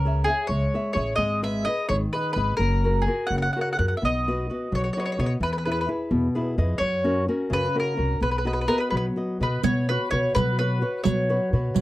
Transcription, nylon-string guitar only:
0.00 0.26 C#4 soft
0.05 0.27 G#4 soft
0.05 0.27 C#5 soft
0.05 0.28 E5 soft
0.28 0.65 G#4 soft
0.28 0.65 C#5 soft
0.28 0.66 E5 medium
0.50 0.95 G#3 soft
0.74 0.94 G#4 soft
0.74 0.94 C#5 soft
0.74 0.95 E5 soft
0.95 1.13 G#4 soft
0.95 1.14 C#5 soft
0.95 1.14 E5 soft
1.18 1.64 G#3 medium
1.43 1.65 G#4 medium
1.43 1.66 B4 medium
1.43 1.66 D#5 medium
1.66 2.04 G#4 soft
1.66 2.05 B4 soft
1.66 2.05 D#5 soft
1.89 2.35 D#3 medium
2.13 2.35 G#4 soft
2.13 2.35 B4 soft
2.13 2.36 D#5 soft
2.36 2.54 G#4 soft
2.36 2.55 B4 soft
2.36 2.55 D#5 medium
2.59 3.06 F#3 medium
2.84 3.06 F#4 soft
2.84 3.06 G#4 soft
2.84 3.06 A#4 medium
3.07 3.46 F#4 soft
3.07 3.46 G#4 soft
3.07 3.46 A#4 soft
3.31 3.77 C#3 medium
3.56 3.77 F#4 soft
3.56 3.78 G#4 soft
3.56 3.78 A#4 soft
3.79 3.97 F#4 soft
3.79 3.97 G#4 soft
3.79 3.97 A#4 soft
4.02 4.48 B3 medium
4.28 4.48 F#4 soft
4.28 4.49 B4 soft
4.28 4.49 D#5 soft
4.50 4.87 F#4 soft
4.50 4.88 B4 soft
4.50 4.88 D#5 soft
4.72 5.18 F#3 medium
4.97 5.17 F#4 soft
4.97 5.18 B4 soft
4.97 5.18 D#5 soft
5.18 5.37 F#4 soft
5.18 5.37 B4 soft
5.18 5.37 D#5 soft
5.41 5.87 E3 soft
5.67 5.87 E4 medium
5.67 5.88 G#4 soft
5.67 5.88 B4 medium
5.88 6.27 E4 soft
5.88 6.27 G#4 soft
5.88 6.27 B4 medium
6.11 6.57 B2 medium
6.35 6.57 E4 soft
6.35 6.57 G#4 soft
6.35 6.57 B4 medium
6.58 6.77 E4 soft
6.58 6.76 G#4 soft
6.58 6.77 B4 soft
6.58 6.79 D#5 medium
6.81 7.27 F#3 medium
7.04 7.27 C#4 medium
7.04 7.28 F#4 medium
7.04 7.27 A#4 medium
7.28 7.66 C#4 soft
7.28 7.67 F#4 soft
7.28 7.67 A#4 soft
7.50 7.96 C#3 medium
7.75 7.96 C#4 soft
7.75 7.96 F#4 soft
7.75 7.96 A#4 soft
7.97 8.16 C#4 soft
7.97 8.16 F#4 soft
7.97 8.16 A#4 soft
8.21 8.45 B3 medium
8.45 8.66 F#4 medium
8.45 8.83 B4 soft
8.45 8.67 D#5 medium
8.68 9.07 B3 soft
8.68 9.07 F#4 soft
8.68 9.07 D#5 soft
8.93 9.39 F#3 medium
9.16 9.39 F#4 soft
9.16 9.39 B4 soft
9.16 9.40 D#5 soft
9.40 9.59 F#4 soft
9.40 9.59 B4 soft
9.40 9.59 D#5 soft
9.64 9.90 B3 medium
9.90 10.11 F#4 medium
9.90 10.11 B4 medium
9.90 10.12 C#5 soft
10.12 10.50 F#4 soft
10.12 10.50 B4 soft
10.12 10.51 C#5 medium
10.35 10.81 F#3 medium
10.60 10.80 F#4 soft
10.60 10.81 B4 soft
10.60 10.81 C#5 medium
10.81 11.20 F#4 soft
10.81 11.20 B4 soft
10.81 11.20 C#5 soft
11.05 11.51 F#3 medium
11.29 11.53 F#4 soft
11.29 11.52 B4 medium
11.29 11.52 C#5 medium
11.54 11.81 F#4 medium
11.54 11.81 B4 soft
11.54 11.81 C#5 soft
11.74 11.81 F#3 medium

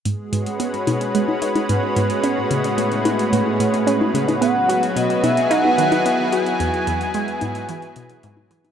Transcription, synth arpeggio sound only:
0.05 0.15 G#2 medium
0.33 0.49 G#2 medium
0.60 0.76 B3 medium
0.87 1.12 B2 medium
1.15 1.31 G#3 medium
1.42 1.66 D#4 medium
1.69 1.79 G#2 medium
1.96 2.13 G#2 medium
2.23 2.40 C#4 medium
2.51 2.75 C#3 medium
2.78 2.94 A3 medium
3.05 3.30 E4 medium
3.32 3.42 A2 medium
3.60 3.76 A2 medium
3.87 4.03 C#4 loud
4.14 4.39 C#3 medium
4.41 4.58 B3 medium
4.69 4.93 F#4 medium
4.96 5.06 B2 medium
5.23 5.40 B2 medium
5.51 5.67 D#4 loud
5.78 6.03 D#3 medium
6.05 6.22 B3 medium
6.32 6.57 F#4 medium
6.60 6.70 E2 medium
6.87 7.04 E2 medium
7.15 7.31 G#3 loud
7.42 7.66 G#2 medium
7.69 7.85 E3 medium
7.96 8.13 B2 medium
8.24 8.48 G#2 loud
8.51 8.67 E3 loud

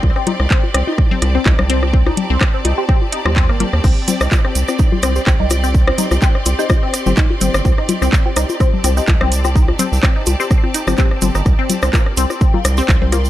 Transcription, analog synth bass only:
0.03 0.12 C2 loud
0.40 0.47 C2 medium
0.74 0.83 C2 medium
1.22 1.38 C2 loud
1.46 1.54 C2 loud
1.59 2.11 C2 medium
2.30 2.37 C2 medium
2.65 2.73 C2 medium
3.25 3.51 D#2 medium
3.49 3.64 G1 loud
3.73 3.80 D#2 medium
3.84 3.92 C2 loud
4.21 4.28 C2 medium
4.55 4.64 C2 medium
5.03 5.19 C2 loud
5.27 5.35 C2 loud
5.40 5.92 C2 loud
6.11 6.18 C2 medium
6.46 6.54 C2 medium
7.06 7.14 G1 medium
7.41 7.50 G1 medium
7.54 7.61 G1 loud
7.65 7.73 C2 loud
8.02 8.09 C2 medium
8.36 8.45 C2 medium
8.84 9.00 C2 loud
9.08 9.16 C2 loud
9.21 9.73 C2 loud
9.92 9.99 C2 medium
10.27 10.35 C2 medium
10.87 10.94 G1 loud
11.22 11.31 G1 medium
11.35 11.42 G1 loud
11.46 11.54 C2 loud
11.83 11.90 C2 medium
12.17 12.26 C2 medium
12.65 12.81 C2 loud
12.89 12.97 C2 loud
13.01 13.30 C2 loud

